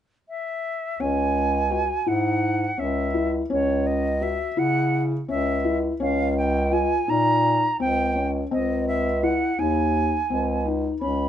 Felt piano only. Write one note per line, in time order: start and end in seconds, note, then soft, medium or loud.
1.00 1.53 C#4 medium
1.71 1.98 F#4 medium
2.06 2.60 E4 medium
2.78 3.05 C#4 medium
3.14 3.41 E4 medium
3.50 4.03 C#4 medium
4.21 4.48 F#4 medium
4.57 5.11 E4 medium
5.28 5.55 C#4 medium
5.65 5.91 E4 medium
6.00 6.54 C#4 medium
6.72 6.99 F4 medium
7.08 7.62 D#4 medium
7.80 8.06 C4 medium
8.15 8.42 C#4 medium
8.51 9.05 C4 medium
9.23 9.50 E4 medium
9.59 10.12 D#4 medium
10.30 10.57 C4 medium
10.66 10.92 D#4 medium
11.01 11.29 C#4 medium